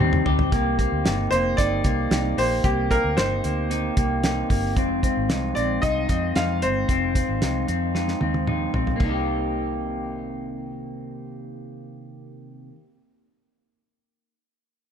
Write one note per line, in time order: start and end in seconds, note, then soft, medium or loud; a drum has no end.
0.00 0.22 D#2 loud
0.00 0.25 C3 medium
0.00 0.25 D#3 loud
0.00 0.25 G3 loud
0.00 1.91 G3 medium
0.00 0.24 C4 loud
0.00 1.05 D#4 medium
0.00 0.26 G4 medium
0.00 0.23 G4 loud
0.13 mid tom medium
0.24 0.48 D2 medium
0.24 0.51 G3 soft
0.24 0.51 C4 medium
0.24 0.51 G4 soft
0.24 floor tom medium
0.39 floor tom medium
0.51 0.86 C2 medium
0.51 0.78 C3 medium
0.51 0.78 D#3 medium
0.51 0.79 A#3 medium
0.51 0.78 C4 medium
0.51 0.77 G4 loud
0.51 kick medium
0.51 closed hi-hat medium
0.78 1.03 A#3 soft
0.78 1.04 C4 medium
0.78 1.05 G4 medium
0.78 kick medium
0.78 closed hi-hat medium
0.92 1.03 D2 medium
1.04 1.28 G1 medium
1.04 1.31 C3 medium
1.04 1.31 D#3 medium
1.04 1.31 A#3 medium
1.04 1.30 C4 medium
1.04 1.58 D#4 medium
1.04 1.29 G4 medium
1.04 snare loud
1.04 closed hi-hat medium
1.30 1.54 F1 medium
1.30 1.57 A#3 soft
1.30 1.57 C4 soft
1.30 1.57 G4 soft
1.30 1.58 C5 medium
1.30 closed hi-hat medium
1.57 1.81 G1 medium
1.57 1.84 D#3 medium
1.57 1.84 A#3 medium
1.57 1.84 C4 medium
1.57 2.11 D#4 medium
1.57 1.83 G4 medium
1.57 2.39 D5 medium
1.57 kick medium
1.57 closed hi-hat medium
1.84 2.07 C2 medium
1.84 2.10 A#3 soft
1.84 2.11 C4 soft
1.84 2.11 G4 soft
1.84 kick medium
1.84 closed hi-hat medium
2.10 2.33 C2 loud
2.10 2.37 C3 medium
2.10 2.38 D#3 medium
2.10 2.38 A#3 medium
2.10 2.37 C4 medium
2.10 3.17 D#4 medium
2.10 2.36 G4 medium
2.10 snare loud
2.10 closed hi-hat medium
2.37 2.60 A#1 medium
2.37 2.64 A#3 soft
2.37 2.64 C4 soft
2.37 2.64 G4 medium
2.37 2.65 C5 medium
2.37 open hi-hat medium
2.64 2.98 C2 medium
2.64 2.90 C3 medium
2.64 2.91 D#3 medium
2.64 2.91 A#3 medium
2.64 2.90 C4 medium
2.64 2.91 G4 medium
2.64 2.88 G4 medium
2.64 kick medium
2.64 closed hi-hat medium
2.89 3.16 A#3 soft
2.89 3.16 C4 soft
2.89 3.16 G4 medium
2.89 3.18 A#4 medium
2.89 kick medium
2.89 closed hi-hat medium
3.04 3.15 D2 medium
3.16 3.40 G1 medium
3.16 3.43 C3 medium
3.16 3.43 D#3 medium
3.16 3.44 A#3 medium
3.16 3.42 C4 medium
3.16 3.70 D#4 medium
3.16 3.41 G4 medium
3.16 4.19 C5 medium
3.16 snare loud
3.16 closed hi-hat medium
3.43 3.89 D2 medium
3.43 3.69 A#3 soft
3.43 3.69 C4 soft
3.43 3.70 G4 soft
3.43 closed hi-hat medium
3.69 3.96 D#3 medium
3.69 3.97 A#3 medium
3.69 3.96 C4 medium
3.69 4.23 D#4 medium
3.69 3.95 G4 medium
3.69 closed hi-hat medium
3.96 4.42 C2 medium
3.96 4.23 A#3 soft
3.96 4.23 C4 soft
3.96 4.23 G4 medium
3.96 kick medium
3.96 closed hi-hat medium
4.23 4.50 C3 medium
4.23 4.50 D#3 medium
4.23 4.50 A#3 medium
4.23 4.50 C4 medium
4.23 5.29 D#4 medium
4.23 4.49 G4 medium
4.23 snare medium
4.23 closed hi-hat medium
4.50 4.77 G1 medium
4.50 4.77 A#3 soft
4.50 4.76 C4 soft
4.50 4.76 G4 soft
4.50 kick medium
4.50 open hi-hat medium
4.76 5.10 F1 medium
4.76 5.03 F2 medium
4.76 5.03 C3 medium
4.76 5.03 D#3 medium
4.76 5.02 G#3 medium
4.76 5.01 C4 medium
4.76 5.00 F4 medium
4.76 kick medium
4.76 closed hi-hat medium
5.02 5.28 D#3 soft
5.02 5.28 G#3 soft
5.02 5.28 C4 medium
5.02 5.29 F4 medium
5.02 kick medium
5.02 closed hi-hat medium
5.17 5.28 G#1 medium
5.28 5.52 C2 medium
5.28 5.55 F2 medium
5.28 5.56 C3 medium
5.28 5.56 D#3 medium
5.28 5.56 G#3 medium
5.28 5.55 C4 medium
5.28 5.82 D#4 soft
5.28 5.54 F4 medium
5.28 snare medium
5.28 closed hi-hat medium
5.55 5.79 A#1 medium
5.55 5.80 D#3 soft
5.55 5.81 G#3 soft
5.55 5.82 C4 soft
5.55 5.82 F4 medium
5.55 5.83 D5 medium
5.55 closed hi-hat medium
5.81 6.05 C2 medium
5.81 6.08 D#3 medium
5.81 6.08 G#3 medium
5.81 6.07 C4 medium
5.81 6.35 D#4 medium
5.81 6.07 F4 medium
5.81 6.37 D#5 medium
5.81 kick medium
5.81 closed hi-hat medium
6.08 6.32 F2 medium
6.08 6.34 D#3 soft
6.08 6.35 G#3 soft
6.08 6.35 C4 soft
6.08 6.35 F4 soft
6.08 kick medium
6.08 closed hi-hat medium
6.35 6.62 F2 medium
6.35 6.65 F2 medium
6.35 6.62 C3 medium
6.35 6.62 D#3 medium
6.35 6.61 G#3 medium
6.35 6.61 C4 medium
6.35 7.41 D#4 soft
6.35 6.60 F4 medium
6.35 6.63 F5 medium
6.35 snare medium
6.35 closed hi-hat medium
6.61 6.85 G1 medium
6.61 6.88 D#3 soft
6.61 6.88 G#3 soft
6.61 6.88 C4 soft
6.61 6.88 F4 soft
6.61 8.44 C5 medium
6.61 closed hi-hat medium
6.88 7.23 F1 medium
6.88 7.15 F2 medium
6.88 7.15 C3 medium
6.88 7.15 D#3 medium
6.88 7.14 G#3 medium
6.88 7.14 C4 medium
6.88 7.13 F4 medium
6.88 kick medium
6.88 closed hi-hat medium
7.14 7.40 D#3 soft
7.14 7.41 G#3 soft
7.14 7.41 C4 soft
7.14 7.41 F4 medium
7.14 kick medium
7.14 closed hi-hat medium
7.29 7.40 G#1 medium
7.41 7.64 C2 medium
7.41 7.68 F2 medium
7.41 7.68 C3 medium
7.41 7.68 D#3 medium
7.41 7.68 G#3 medium
7.41 7.67 C4 medium
7.41 7.94 D#4 soft
7.41 7.66 F4 medium
7.41 snare medium
7.41 closed hi-hat medium
7.68 8.13 F2 medium
7.68 7.93 D#3 soft
7.68 7.94 G#3 soft
7.68 7.95 C4 soft
7.68 7.94 F4 soft
7.68 closed hi-hat medium
7.94 8.21 D#3 soft
7.94 8.21 G#3 medium
7.94 8.20 C4 medium
7.94 8.47 D#4 medium
7.94 8.19 F4 medium
7.94 snare soft
8.08 snare soft
8.21 8.66 D#2 medium
8.21 8.46 D#3 soft
8.21 8.47 G#3 soft
8.21 8.47 C4 soft
8.21 8.47 F4 soft
8.21 high tom medium
8.34 high tom medium
8.47 8.74 F2 medium
8.47 8.74 C3 medium
8.47 8.74 D#3 medium
8.47 8.73 G#3 medium
8.47 8.72 C4 medium
8.47 9.04 D#4 soft
8.47 8.71 F4 medium
8.47 mid tom medium
8.73 8.97 A#1 medium
8.73 8.98 D#3 soft
8.73 9.01 G#3 soft
8.73 9.01 C4 soft
8.73 9.00 F4 medium
8.73 floor tom medium
8.87 floor tom medium
8.94 12.70 C3 medium
8.94 12.72 A#3 medium
8.99 12.72 C2 medium
8.99 12.75 D#3 medium
8.99 kick medium
8.99 floor tom medium
8.99 china medium
9.04 12.80 A#3 medium
9.04 12.80 D#4 medium
9.09 12.85 C4 medium
9.13 12.89 G4 medium